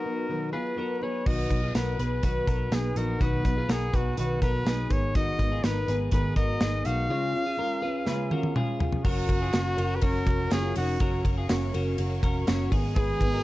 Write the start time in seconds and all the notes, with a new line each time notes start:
Already playing: D#4 F#4 A#4
0.04 F#3 B3 D#4 B4
0.28 B2 D#3 F#3 B3 D#4 B4
0.53 F#3 B3 D#4 F4 G#4 B4
0.76 F#3 B3 D#4 F#4 A#4 B4
1.01 F#3 B3 D#4 G#4 B4 C#5
1.25 B1 B2 D#3 F#3 B3 D#4 F#4 B4 D#5, kick, crash
1.50 B1 F#3 B3 D#4 B4, kick, closed hi-hat
1.63 F4 G#4
1.73 B1 F#3 B3 D#4 F#4 A#4 B4, snare, closed hi-hat
1.97 B1 F#3 B3 D#4 G#4 B4, closed hi-hat
2.22 B1 B2 D#3 F#3 B3 D#4 F#4 B4, kick, closed hi-hat
2.47 B1 F#3 B3 D#4 F#4 A#4 B4, kick, closed hi-hat
2.71 B1 F#3 B3 D#4 G#4 B4, snare, closed hi-hat
2.95 A#1 F#3 B3 D#4 F#4 A#4 B4, closed hi-hat
3.19 B1 B2 D#3 F#3 B3 D#4 F#4 B4, kick, closed hi-hat
3.44 B1 F#3 B3 D#4 B4, kick, closed hi-hat
3.57 F4 G#4
3.68 B1 F#3 B3 D#4 F#4 G#4 A#4 B4, snare, closed hi-hat
3.92 B1 F#3 B3 D#4 F#4 G#4 B4, kick, closed hi-hat
4.16 B1 B2 D#3 F#3 B3 D#4 F#4 B4, closed hi-hat
4.42 B1 F#3 B3 D#4 F#4 A#4 B4, kick, closed hi-hat
4.65 B1 F#3 B3 D#4 G#4 B4, snare, closed hi-hat
4.90 G#1 G#3 B3 D#4 A#4 C#5, kick, closed hi-hat
5.14 G#2 D#3 G#3 B3 D#4 F#4 A#4 D#5, kick, closed hi-hat
5.38 G#1 G#3 B3 D#4 A#4, kick, closed hi-hat
5.52 F4 G#4
5.63 G#1 G#3 B3 D#4 A#4 B4, snare, closed hi-hat
5.87 G#1 G#3 B3 D#4 G#4 A#4 B4, closed hi-hat
6.11 G#1 G#2 D#3 G#3 B3 D#4 G#4 A#4 B4, kick, closed hi-hat
6.36 G#1 G#3 B3 D#4 F#4 A#4 D#5, kick, closed hi-hat
6.60 G#1 G#3 B3 D#4 G#4 A#4, snare, closed hi-hat
6.85 B1 G#3 B3 D#4 F#4 A#4 F5, closed hi-hat
7.08 C#3 G#3 C#4 F4 G#4
7.33 C#4 F4 G#4
7.46 F4 G#4
7.57 G#3 C#4 F4 G#4 A#4
7.82 C#4 F4 G#4 B4
8.06 C#3 G#3 C#4 F4 G#4 B4, snare
8.30 C#4 F4 F#4 G#4 A#4, high tom
8.43 high tom
8.55 G#3 C#4 F4 G#4, mid tom
8.80 C#4 F4 G#4, floor tom
8.92 floor tom
9.05 F#1 F#3 C#4 F#4 A#4 C#5 F#5 C#6, kick, crash
9.28 F#1 C#4 F#4 A#4, kick, ride
9.42 F4 G#4
9.53 F#1 F#3 C#4 F#4 A#4, snare, clap, ride
9.77 F#1 C#4 F#4 A#4, ride
9.95 B4
10.02 F#1 F#3 C#4 F#4 A#4, kick, ride
10.26 F1 C#4 F#4 A#4, kick, clap, ride
10.51 F#1 F#3 C#4 F4 F#4 G#4 A#4, snare, clap, ride
10.76 F1 C#4 D#4 F#4 A#4, open hi-hat, ride
11.00 F#1 F#3 C#4 F#4 A#4 F5, kick, hi-hat pedal, ride
11.24 F#1 C#4 F#4 A#4, kick, ride
11.38 F4 G#4
11.49 F#1 F#3 C#4 F#4 A#4, snare, clap, ride
11.73 F#1 C#4 F#4 A#4, ride
11.98 F#1 F#3 C#4 F#4 A#4, ride
12.22 F1 C#4 F#4 A#4, kick, clap, ride
12.47 F#1 F#3 C#4 F#4 A#4, snare, clap, ride
12.71 G#1 G#3 B3 D#4 G#4 B4 D#5 G#5 D#6, kick, open hi-hat, ride
12.96 G#2 D#3 G#3 B3 D#4 G#4 B4, kick, hi-hat pedal, ride
13.21 G#1 G#3 B3 D#4, kick, ride
13.34 F#4 A#4